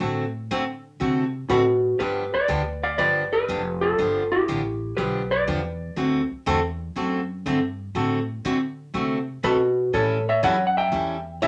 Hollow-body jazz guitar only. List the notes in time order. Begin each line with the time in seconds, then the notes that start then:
1.50 F#4 B4
1.99 G4 B4
2.34 B4 D5
2.83 D5 F5
2.98 B4 D5
3.33 G4 B4
3.81 F4 A4
4.32 E4 G4
4.97 G4 B4
5.31 B4 D5
9.44 F#4 B4
9.94 A4 C#5
10.29 C#5 E5
10.44 C#5 F#5
10.67 F#5
10.77 E5 G5
11.42 C#5 E5